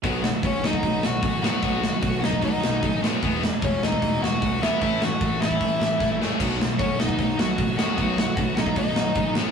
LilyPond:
<<
  \new Staff \with { instrumentName = "Lead electric guitar" } { \time 4/4 \key b \mixolydian \tempo 4 = 151 r4 <cis' cis''>8 <dis' dis''>4 <fis' fis''>4 <fis' fis''>8~ | <fis' fis''>4. <dis' dis''>8 <dis' dis''>4. r8 | r4 <cis' cis''>8 <dis' dis''>4 <fis' fis''>4 <e' e''>8 | <e' e''>8 <fis' fis''>4 <e' e''>2 r8 |
r4 <cis' cis''>8 <dis' dis''>4 <fis' fis''>4 <fis' fis''>8~ | <fis' fis''>4. <dis' dis''>8 <dis' dis''>4. r8 | }
  \new Staff \with { instrumentName = "Distorted electric guitar" } { \clef bass \time 4/4 \key b \mixolydian <b, fis b>4 <b, fis b>8 <b, fis b>8 <b, fis b>4 <b, fis b>8 <b, fis b>8 | <b, fis b>4 <b, fis b>8 <b, fis b>8 <b, fis b>4 <b, fis b>8 <b, fis b>8 | <e, b, e>4 <e, b, e>8 <e, b, e>8 <e, b, e>4 <e, b, e>8 <e, b, e>8 | <a, e a>4 <a, e a>8 <a, e a>8 <a, e a>4 <a, e a>8 <a, e a>8 |
<b, fis b>4 <b, fis b>8 <b, fis b>8 <b, fis b>4 <b, fis b>8 <b, fis b>8 | <b, fis b>4 <b, fis b>8 <b, fis b>8 <b, fis b>4 <b, fis b>8 <b, fis b>8 | }
  \new Staff \with { instrumentName = "Overdriven electric guitar" } { \clef bass \time 4/4 \key b \mixolydian <b, dis fis>8 <b, dis>8 <b, dis>8 <b, dis>8 <b, dis>8 <b, dis>8 <b, dis>8 <b, dis fis>8 | <b, dis fis>8 <b, dis>8 <b, dis>8 <b, dis>8 <b, dis>8 <b, dis>8 <b, dis>8 <b, dis fis>8 | <e gis b>8 <e gis>8 <e gis>8 <e gis>8 <e gis>8 <e gis>8 <e gis>8 <e gis b>8 | <a, e a>8 <a, e>8 <a, e>8 <a, e>8 <a, e>8 <a, e>8 <a, e>8 <a, e a>8 |
<b, dis fis>8 <b, dis>8 <b, dis>8 <b, dis>8 <b, dis>8 <b, dis>8 <b, dis>8 <b, dis fis>8 | <b, dis fis>8 <b, dis>8 <b, dis>8 <b, dis>8 <b, dis>8 <b, dis>8 <b, dis>8 <b, dis fis>8 | }
  \new Staff \with { instrumentName = "Overdriven electric guitar" } { \clef bass \time 4/4 \key b \mixolydian <b, fis b>8 <b, fis>8 <b, fis>8 <b, fis>8 <b, fis>8 <b, fis>8 <b, fis>8 <b, fis b>8 | <b, fis b>8 <b, fis>8 <b, fis>8 <b, fis>8 <b, fis>8 <b, fis>8 <b, fis>8 <b, fis b>8 | <e, b, e>8 <e, b,>8 <e, b,>8 <e, b,>8 <e, b,>8 <e, b,>8 <e, b,>8 <e, b, e>8 | <a, e a>8 <a, e>8 <a, e>8 <a, e>8 <a, e>8 <a, e>8 <a, e>8 <a, e a>8 |
<b, fis b>8 <b, fis>8 <b, fis>8 <b, fis>8 <b, fis>8 <b, fis>8 <b, fis>8 <b, fis b>8 | <b, fis b>8 <b, fis>8 <b, fis>8 <b, fis>8 <b, fis>8 <b, fis>8 <b, fis>8 <b, fis b>8 | }
  \new Staff \with { instrumentName = "Picked electric bass" } { \clef bass \time 4/4 \key b \mixolydian b,,4 b,,8 b,,8 b,,8 b,,8 a,,4 | b,,4 b,,8 b,,8 b,,8 b,,8 a,,4 | e,,4 e,,8 e,,8 e,,8 e,,8 cis,4 | a,,4 a,,8 a,,8 a,,8 a,,8 ais,,4 |
b,,4 b,,8 b,,8 b,,8 b,,8 a,,4 | b,,4 b,,8 b,,8 b,,8 b,,8 a,,4 | }
  \new DrumStaff \with { instrumentName = "Drums" } \drummode { \time 4/4 <hho bd>8 sn8 <hho bd>8 sn16 bd16 <hho bd>8 sn8 <hho bd>8 sn8 | <hho bd>8 sn8 <hho bd>8 sn16 bd16 <hho bd>8 sn8 <hho bd>8 sn8 | <hho bd>8 sn8 <hho bd>8 sn16 bd16 <hho bd>8 sn8 <hho bd>8 sn8 | <hho bd>8 sn8 <hho bd>8 sn16 bd16 <hho bd>8 sn8 <bd sn>8 sn8 |
<cymc hho bd>8 sn8 <hho bd>8 sn16 bd16 <hho bd>8 sn8 <hho bd>8 sn8 | <hho bd>8 sn8 <hho bd>8 sn16 bd16 <hho bd>8 sn8 <hho bd>8 sn8 | }
>>